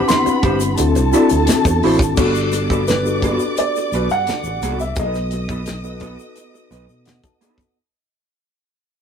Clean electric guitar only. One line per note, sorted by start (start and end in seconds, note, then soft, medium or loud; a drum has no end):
0.08 muted clean electric guitar stroke soft
0.26 muted clean electric guitar stroke soft
0.43 0.57 D4 medium
0.43 0.58 G4 medium
0.43 0.58 C5 medium
0.61 muted clean electric guitar stroke soft
0.79 muted clean electric guitar stroke soft
0.96 muted clean electric guitar stroke soft
1.14 1.28 E4 medium
1.14 1.28 F#4 medium
1.14 1.28 D5 medium
1.31 muted clean electric guitar stroke soft
1.49 muted clean electric guitar stroke soft
1.67 muted clean electric guitar stroke soft
1.84 1.98 E4 medium
1.84 1.98 F#4 medium
1.84 1.98 C5 medium
2.01 muted clean electric guitar stroke soft
2.18 2.32 B3 medium
2.18 2.33 F#4 medium
2.18 2.33 A4 medium
2.35 muted clean electric guitar stroke soft
2.53 muted clean electric guitar stroke soft
2.70 2.82 B3 medium
2.70 2.82 F#4 medium
2.70 2.81 A4 medium
2.89 muted clean electric guitar stroke soft
3.06 muted clean electric guitar stroke soft
3.23 3.43 B3 medium
3.23 3.41 F#4 medium
3.23 3.41 A4 medium
3.42 muted clean electric guitar stroke soft
3.59 muted clean electric guitar stroke soft
3.77 muted clean electric guitar stroke soft
3.94 4.07 B3 medium
3.94 4.08 F#4 medium
3.94 4.08 B4 medium
4.28 muted clean electric guitar stroke soft
4.47 muted clean electric guitar stroke soft
4.63 4.82 B3 medium
4.63 4.81 F#4 medium
4.63 4.79 A4 medium
4.81 muted clean electric guitar stroke soft
4.98 5.17 B3 medium
4.98 5.15 D#4 medium
4.98 5.14 A4 medium
5.15 muted clean electric guitar stroke soft
5.33 muted clean electric guitar stroke soft
5.50 5.62 B3 medium
5.50 5.61 D#4 medium
5.50 5.61 A4 medium
5.68 muted clean electric guitar stroke soft
5.85 muted clean electric guitar stroke soft
6.02 6.16 B3 medium
6.02 6.17 D#4 medium
6.02 6.17 A4 medium
6.20 muted clean electric guitar stroke soft
6.37 muted clean electric guitar stroke soft
6.54 muted clean electric guitar stroke soft
6.71 6.85 B3 medium
6.71 6.86 D#4 medium
6.71 6.86 B4 medium
6.91 muted clean electric guitar stroke soft
7.06 muted clean electric guitar stroke soft
7.24 muted clean electric guitar stroke soft
7.41 7.61 B3 medium
7.41 7.58 D#4 medium
7.41 7.57 A4 medium
7.59 muted clean electric guitar stroke soft